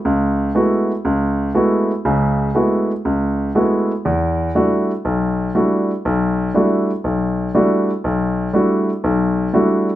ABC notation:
X:1
M:4/4
L:1/8
Q:"Swing" 1/4=120
K:Edor
V:1 name="Grand piano"
C,,2 [^G,A,B,EF] z C,,2 [G,A,B,EF] z | [C,,C,]2 [^G,A,B,EF] z C,,2 [G,A,B,EF] z | E,,2 [G,A,DEF] z B,,,2 [G,A,DEF] z | B,,,2 [G,A,DEF] z B,,,2 [G,A,DEF] z |
B,,,2 [G,A,DEF] z B,,,2 [G,A,DEF] z |]